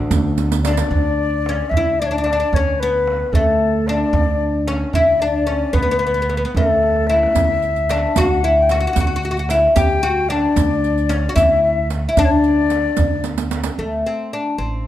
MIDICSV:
0, 0, Header, 1, 7, 480
1, 0, Start_track
1, 0, Tempo, 535714
1, 825, Time_signature, 6, 3, 24, 8
1, 13325, End_track
2, 0, Start_track
2, 0, Title_t, "Flute"
2, 0, Program_c, 0, 73
2, 571, Note_on_c, 0, 74, 90
2, 1519, Note_on_c, 0, 76, 85
2, 1533, Note_off_c, 0, 74, 0
2, 1786, Note_on_c, 0, 74, 87
2, 1800, Note_off_c, 0, 76, 0
2, 1847, Note_on_c, 0, 73, 66
2, 1861, Note_off_c, 0, 74, 0
2, 1916, Note_on_c, 0, 74, 88
2, 1929, Note_off_c, 0, 73, 0
2, 2280, Note_on_c, 0, 73, 77
2, 2293, Note_off_c, 0, 74, 0
2, 2505, Note_on_c, 0, 71, 75
2, 2519, Note_off_c, 0, 73, 0
2, 2977, Note_on_c, 0, 69, 70
2, 2991, Note_off_c, 0, 71, 0
2, 3468, Note_on_c, 0, 74, 81
2, 3482, Note_off_c, 0, 69, 0
2, 4185, Note_off_c, 0, 74, 0
2, 4424, Note_on_c, 0, 76, 77
2, 4658, Note_on_c, 0, 74, 81
2, 4671, Note_off_c, 0, 76, 0
2, 5139, Note_on_c, 0, 71, 82
2, 5152, Note_off_c, 0, 74, 0
2, 5858, Note_off_c, 0, 71, 0
2, 5864, Note_on_c, 0, 69, 74
2, 6335, Note_on_c, 0, 76, 91
2, 6348, Note_off_c, 0, 69, 0
2, 7296, Note_on_c, 0, 78, 89
2, 7309, Note_off_c, 0, 76, 0
2, 7707, Note_off_c, 0, 78, 0
2, 7712, Note_on_c, 0, 79, 57
2, 7792, Note_on_c, 0, 78, 84
2, 7806, Note_off_c, 0, 79, 0
2, 8507, Note_off_c, 0, 78, 0
2, 8744, Note_on_c, 0, 79, 90
2, 9218, Note_on_c, 0, 74, 87
2, 9231, Note_off_c, 0, 79, 0
2, 10167, Note_off_c, 0, 74, 0
2, 10172, Note_on_c, 0, 76, 67
2, 10238, Note_on_c, 0, 74, 70
2, 10252, Note_off_c, 0, 76, 0
2, 10286, Note_on_c, 0, 76, 71
2, 10300, Note_off_c, 0, 74, 0
2, 10417, Note_off_c, 0, 76, 0
2, 10424, Note_on_c, 0, 76, 67
2, 10650, Note_off_c, 0, 76, 0
2, 10903, Note_on_c, 0, 74, 92
2, 10972, Note_on_c, 0, 73, 78
2, 10986, Note_off_c, 0, 74, 0
2, 11028, Note_on_c, 0, 74, 103
2, 11041, Note_off_c, 0, 73, 0
2, 11866, Note_off_c, 0, 74, 0
2, 13325, End_track
3, 0, Start_track
3, 0, Title_t, "Oud"
3, 0, Program_c, 1, 24
3, 0, Note_on_c, 1, 62, 81
3, 514, Note_off_c, 1, 62, 0
3, 602, Note_on_c, 1, 62, 73
3, 1331, Note_off_c, 1, 62, 0
3, 1334, Note_on_c, 1, 61, 74
3, 1567, Note_off_c, 1, 61, 0
3, 1585, Note_on_c, 1, 64, 78
3, 1803, Note_off_c, 1, 64, 0
3, 1807, Note_on_c, 1, 62, 81
3, 1865, Note_off_c, 1, 62, 0
3, 1890, Note_on_c, 1, 62, 59
3, 1940, Note_off_c, 1, 62, 0
3, 1954, Note_on_c, 1, 62, 58
3, 1994, Note_off_c, 1, 62, 0
3, 2005, Note_on_c, 1, 62, 56
3, 2066, Note_off_c, 1, 62, 0
3, 2085, Note_on_c, 1, 62, 59
3, 2139, Note_off_c, 1, 62, 0
3, 2148, Note_on_c, 1, 62, 55
3, 2205, Note_off_c, 1, 62, 0
3, 2296, Note_on_c, 1, 61, 84
3, 2528, Note_off_c, 1, 61, 0
3, 2532, Note_on_c, 1, 59, 86
3, 2998, Note_off_c, 1, 59, 0
3, 3001, Note_on_c, 1, 57, 77
3, 3486, Note_on_c, 1, 62, 79
3, 3488, Note_off_c, 1, 57, 0
3, 4186, Note_off_c, 1, 62, 0
3, 4190, Note_on_c, 1, 61, 82
3, 4432, Note_off_c, 1, 61, 0
3, 4435, Note_on_c, 1, 64, 84
3, 4671, Note_off_c, 1, 64, 0
3, 4675, Note_on_c, 1, 62, 84
3, 4894, Note_off_c, 1, 62, 0
3, 4898, Note_on_c, 1, 61, 73
3, 5135, Note_on_c, 1, 59, 88
3, 5150, Note_off_c, 1, 61, 0
3, 5208, Note_off_c, 1, 59, 0
3, 5219, Note_on_c, 1, 59, 61
3, 5286, Note_off_c, 1, 59, 0
3, 5298, Note_on_c, 1, 59, 72
3, 5356, Note_off_c, 1, 59, 0
3, 5367, Note_on_c, 1, 59, 60
3, 5424, Note_off_c, 1, 59, 0
3, 5434, Note_on_c, 1, 59, 56
3, 5493, Note_off_c, 1, 59, 0
3, 5504, Note_on_c, 1, 59, 53
3, 5564, Note_off_c, 1, 59, 0
3, 5573, Note_on_c, 1, 59, 58
3, 5629, Note_off_c, 1, 59, 0
3, 5640, Note_on_c, 1, 59, 52
3, 5699, Note_off_c, 1, 59, 0
3, 5710, Note_on_c, 1, 59, 62
3, 5768, Note_off_c, 1, 59, 0
3, 5778, Note_on_c, 1, 59, 63
3, 5836, Note_off_c, 1, 59, 0
3, 5888, Note_on_c, 1, 57, 73
3, 6357, Note_on_c, 1, 64, 81
3, 6372, Note_off_c, 1, 57, 0
3, 7079, Note_off_c, 1, 64, 0
3, 7083, Note_on_c, 1, 62, 89
3, 7322, Note_off_c, 1, 62, 0
3, 7326, Note_on_c, 1, 66, 102
3, 7559, Note_off_c, 1, 66, 0
3, 7563, Note_on_c, 1, 64, 85
3, 7779, Note_off_c, 1, 64, 0
3, 7808, Note_on_c, 1, 66, 83
3, 7867, Note_off_c, 1, 66, 0
3, 7889, Note_on_c, 1, 66, 62
3, 7941, Note_off_c, 1, 66, 0
3, 7950, Note_on_c, 1, 66, 65
3, 7991, Note_off_c, 1, 66, 0
3, 8002, Note_on_c, 1, 66, 51
3, 8056, Note_off_c, 1, 66, 0
3, 8067, Note_on_c, 1, 66, 62
3, 8116, Note_off_c, 1, 66, 0
3, 8126, Note_on_c, 1, 66, 53
3, 8196, Note_off_c, 1, 66, 0
3, 8207, Note_on_c, 1, 66, 75
3, 8269, Note_off_c, 1, 66, 0
3, 8286, Note_on_c, 1, 66, 65
3, 8331, Note_off_c, 1, 66, 0
3, 8342, Note_on_c, 1, 66, 71
3, 8404, Note_off_c, 1, 66, 0
3, 8416, Note_on_c, 1, 66, 65
3, 8475, Note_off_c, 1, 66, 0
3, 8515, Note_on_c, 1, 64, 94
3, 8735, Note_off_c, 1, 64, 0
3, 8743, Note_on_c, 1, 67, 100
3, 8982, Note_off_c, 1, 67, 0
3, 8986, Note_on_c, 1, 66, 94
3, 9225, Note_off_c, 1, 66, 0
3, 9229, Note_on_c, 1, 62, 87
3, 9939, Note_on_c, 1, 61, 83
3, 9970, Note_off_c, 1, 62, 0
3, 10117, Note_on_c, 1, 66, 72
3, 10126, Note_off_c, 1, 61, 0
3, 10171, Note_off_c, 1, 66, 0
3, 10175, Note_on_c, 1, 64, 89
3, 10628, Note_off_c, 1, 64, 0
3, 10830, Note_on_c, 1, 64, 76
3, 10901, Note_off_c, 1, 64, 0
3, 10919, Note_on_c, 1, 62, 109
3, 11838, Note_off_c, 1, 62, 0
3, 12354, Note_on_c, 1, 57, 62
3, 12576, Note_off_c, 1, 57, 0
3, 12602, Note_on_c, 1, 60, 63
3, 12838, Note_off_c, 1, 60, 0
3, 12842, Note_on_c, 1, 62, 67
3, 13064, Note_off_c, 1, 62, 0
3, 13068, Note_on_c, 1, 60, 67
3, 13317, Note_off_c, 1, 60, 0
3, 13325, End_track
4, 0, Start_track
4, 0, Title_t, "Double bass"
4, 0, Program_c, 2, 43
4, 0, Note_on_c, 2, 38, 61
4, 869, Note_off_c, 2, 38, 0
4, 13325, End_track
5, 0, Start_track
5, 0, Title_t, "Upright bass"
5, 0, Program_c, 3, 32
5, 96, Note_on_c, 3, 38, 102
5, 723, Note_off_c, 3, 38, 0
5, 812, Note_on_c, 3, 38, 88
5, 1441, Note_off_c, 3, 38, 0
5, 1534, Note_on_c, 3, 38, 79
5, 2162, Note_off_c, 3, 38, 0
5, 2263, Note_on_c, 3, 38, 88
5, 2888, Note_off_c, 3, 38, 0
5, 2981, Note_on_c, 3, 38, 81
5, 3607, Note_off_c, 3, 38, 0
5, 3700, Note_on_c, 3, 38, 106
5, 4326, Note_off_c, 3, 38, 0
5, 4420, Note_on_c, 3, 38, 91
5, 5046, Note_off_c, 3, 38, 0
5, 5136, Note_on_c, 3, 38, 89
5, 5764, Note_off_c, 3, 38, 0
5, 5864, Note_on_c, 3, 38, 77
5, 6489, Note_off_c, 3, 38, 0
5, 6586, Note_on_c, 3, 38, 89
5, 7210, Note_off_c, 3, 38, 0
5, 7310, Note_on_c, 3, 38, 95
5, 7932, Note_off_c, 3, 38, 0
5, 8032, Note_on_c, 3, 38, 96
5, 8653, Note_off_c, 3, 38, 0
5, 8745, Note_on_c, 3, 38, 80
5, 9369, Note_off_c, 3, 38, 0
5, 9464, Note_on_c, 3, 38, 106
5, 10089, Note_off_c, 3, 38, 0
5, 10178, Note_on_c, 3, 38, 95
5, 10806, Note_off_c, 3, 38, 0
5, 10904, Note_on_c, 3, 38, 91
5, 11529, Note_off_c, 3, 38, 0
5, 11625, Note_on_c, 3, 38, 85
5, 12250, Note_off_c, 3, 38, 0
5, 12349, Note_on_c, 3, 38, 74
5, 12557, Note_off_c, 3, 38, 0
5, 13067, Note_on_c, 3, 33, 73
5, 13277, Note_off_c, 3, 33, 0
5, 13325, End_track
6, 0, Start_track
6, 0, Title_t, "Riq"
6, 98, Note_on_c, 9, 54, 62
6, 188, Note_off_c, 9, 54, 0
6, 337, Note_on_c, 9, 54, 56
6, 427, Note_off_c, 9, 54, 0
6, 463, Note_on_c, 9, 54, 66
6, 553, Note_off_c, 9, 54, 0
6, 579, Note_on_c, 9, 54, 76
6, 669, Note_off_c, 9, 54, 0
6, 693, Note_on_c, 9, 54, 80
6, 783, Note_off_c, 9, 54, 0
6, 6590, Note_on_c, 9, 54, 72
6, 6680, Note_off_c, 9, 54, 0
6, 6830, Note_on_c, 9, 54, 16
6, 6920, Note_off_c, 9, 54, 0
6, 6955, Note_on_c, 9, 54, 16
6, 7044, Note_off_c, 9, 54, 0
6, 7072, Note_on_c, 9, 54, 51
6, 7162, Note_off_c, 9, 54, 0
6, 7311, Note_on_c, 9, 54, 72
6, 7400, Note_off_c, 9, 54, 0
6, 7788, Note_on_c, 9, 54, 52
6, 7878, Note_off_c, 9, 54, 0
6, 8028, Note_on_c, 9, 54, 65
6, 8118, Note_off_c, 9, 54, 0
6, 8272, Note_on_c, 9, 54, 18
6, 8362, Note_off_c, 9, 54, 0
6, 8396, Note_on_c, 9, 54, 17
6, 8486, Note_off_c, 9, 54, 0
6, 8511, Note_on_c, 9, 54, 48
6, 8600, Note_off_c, 9, 54, 0
6, 8747, Note_on_c, 9, 54, 65
6, 8836, Note_off_c, 9, 54, 0
6, 9466, Note_on_c, 9, 54, 62
6, 9556, Note_off_c, 9, 54, 0
6, 9713, Note_on_c, 9, 54, 18
6, 9803, Note_off_c, 9, 54, 0
6, 9835, Note_on_c, 9, 54, 16
6, 9924, Note_off_c, 9, 54, 0
6, 9946, Note_on_c, 9, 54, 44
6, 10036, Note_off_c, 9, 54, 0
6, 10192, Note_on_c, 9, 54, 56
6, 10282, Note_off_c, 9, 54, 0
6, 10665, Note_on_c, 9, 54, 47
6, 10755, Note_off_c, 9, 54, 0
6, 10905, Note_on_c, 9, 54, 55
6, 10994, Note_off_c, 9, 54, 0
6, 11144, Note_on_c, 9, 54, 17
6, 11234, Note_off_c, 9, 54, 0
6, 11380, Note_on_c, 9, 54, 44
6, 11469, Note_off_c, 9, 54, 0
6, 11617, Note_on_c, 9, 54, 63
6, 11707, Note_off_c, 9, 54, 0
6, 11861, Note_on_c, 9, 54, 52
6, 11951, Note_off_c, 9, 54, 0
6, 11985, Note_on_c, 9, 54, 65
6, 12075, Note_off_c, 9, 54, 0
6, 12106, Note_on_c, 9, 54, 67
6, 12195, Note_off_c, 9, 54, 0
6, 12217, Note_on_c, 9, 54, 84
6, 12306, Note_off_c, 9, 54, 0
6, 13325, End_track
7, 0, Start_track
7, 0, Title_t, "Tombak"
7, 97, Note_on_c, 9, 64, 96
7, 186, Note_off_c, 9, 64, 0
7, 340, Note_on_c, 9, 63, 51
7, 430, Note_off_c, 9, 63, 0
7, 460, Note_on_c, 9, 62, 68
7, 550, Note_off_c, 9, 62, 0
7, 580, Note_on_c, 9, 63, 78
7, 669, Note_off_c, 9, 63, 0
7, 698, Note_on_c, 9, 62, 84
7, 787, Note_off_c, 9, 62, 0
7, 825, Note_on_c, 9, 64, 71
7, 915, Note_off_c, 9, 64, 0
7, 1074, Note_on_c, 9, 62, 22
7, 1163, Note_off_c, 9, 62, 0
7, 1308, Note_on_c, 9, 63, 73
7, 1398, Note_off_c, 9, 63, 0
7, 1554, Note_on_c, 9, 64, 79
7, 1644, Note_off_c, 9, 64, 0
7, 2026, Note_on_c, 9, 63, 61
7, 2116, Note_off_c, 9, 63, 0
7, 2269, Note_on_c, 9, 64, 76
7, 2359, Note_off_c, 9, 64, 0
7, 2511, Note_on_c, 9, 62, 24
7, 2600, Note_off_c, 9, 62, 0
7, 2755, Note_on_c, 9, 63, 70
7, 2845, Note_off_c, 9, 63, 0
7, 2990, Note_on_c, 9, 64, 86
7, 3079, Note_off_c, 9, 64, 0
7, 3474, Note_on_c, 9, 63, 64
7, 3564, Note_off_c, 9, 63, 0
7, 3715, Note_on_c, 9, 64, 78
7, 3805, Note_off_c, 9, 64, 0
7, 3944, Note_on_c, 9, 62, 26
7, 4034, Note_off_c, 9, 62, 0
7, 4188, Note_on_c, 9, 63, 67
7, 4278, Note_off_c, 9, 63, 0
7, 4422, Note_on_c, 9, 64, 83
7, 4511, Note_off_c, 9, 64, 0
7, 4901, Note_on_c, 9, 63, 54
7, 4990, Note_off_c, 9, 63, 0
7, 5143, Note_on_c, 9, 64, 72
7, 5233, Note_off_c, 9, 64, 0
7, 5397, Note_on_c, 9, 62, 25
7, 5486, Note_off_c, 9, 62, 0
7, 5522, Note_on_c, 9, 62, 24
7, 5611, Note_off_c, 9, 62, 0
7, 5637, Note_on_c, 9, 63, 58
7, 5727, Note_off_c, 9, 63, 0
7, 5882, Note_on_c, 9, 64, 97
7, 5971, Note_off_c, 9, 64, 0
7, 6120, Note_on_c, 9, 63, 49
7, 6210, Note_off_c, 9, 63, 0
7, 6237, Note_on_c, 9, 62, 59
7, 6327, Note_off_c, 9, 62, 0
7, 6362, Note_on_c, 9, 63, 71
7, 6451, Note_off_c, 9, 63, 0
7, 6479, Note_on_c, 9, 62, 81
7, 6568, Note_off_c, 9, 62, 0
7, 6602, Note_on_c, 9, 64, 91
7, 6692, Note_off_c, 9, 64, 0
7, 6845, Note_on_c, 9, 62, 26
7, 6934, Note_off_c, 9, 62, 0
7, 7080, Note_on_c, 9, 63, 78
7, 7170, Note_off_c, 9, 63, 0
7, 7314, Note_on_c, 9, 64, 88
7, 7404, Note_off_c, 9, 64, 0
7, 7802, Note_on_c, 9, 63, 73
7, 7891, Note_off_c, 9, 63, 0
7, 8036, Note_on_c, 9, 64, 79
7, 8126, Note_off_c, 9, 64, 0
7, 8276, Note_on_c, 9, 62, 26
7, 8366, Note_off_c, 9, 62, 0
7, 8502, Note_on_c, 9, 63, 75
7, 8592, Note_off_c, 9, 63, 0
7, 8750, Note_on_c, 9, 64, 95
7, 8840, Note_off_c, 9, 64, 0
7, 9230, Note_on_c, 9, 63, 68
7, 9320, Note_off_c, 9, 63, 0
7, 9470, Note_on_c, 9, 64, 78
7, 9560, Note_off_c, 9, 64, 0
7, 9711, Note_on_c, 9, 62, 23
7, 9801, Note_off_c, 9, 62, 0
7, 9944, Note_on_c, 9, 63, 65
7, 10034, Note_off_c, 9, 63, 0
7, 10183, Note_on_c, 9, 64, 91
7, 10273, Note_off_c, 9, 64, 0
7, 10668, Note_on_c, 9, 63, 63
7, 10758, Note_off_c, 9, 63, 0
7, 10907, Note_on_c, 9, 64, 86
7, 10997, Note_off_c, 9, 64, 0
7, 11160, Note_on_c, 9, 62, 25
7, 11249, Note_off_c, 9, 62, 0
7, 11275, Note_on_c, 9, 62, 26
7, 11365, Note_off_c, 9, 62, 0
7, 11391, Note_on_c, 9, 63, 69
7, 11480, Note_off_c, 9, 63, 0
7, 11634, Note_on_c, 9, 64, 85
7, 11724, Note_off_c, 9, 64, 0
7, 11872, Note_on_c, 9, 63, 54
7, 11961, Note_off_c, 9, 63, 0
7, 11993, Note_on_c, 9, 62, 65
7, 12083, Note_off_c, 9, 62, 0
7, 12107, Note_on_c, 9, 63, 76
7, 12197, Note_off_c, 9, 63, 0
7, 12219, Note_on_c, 9, 62, 84
7, 12308, Note_off_c, 9, 62, 0
7, 13325, End_track
0, 0, End_of_file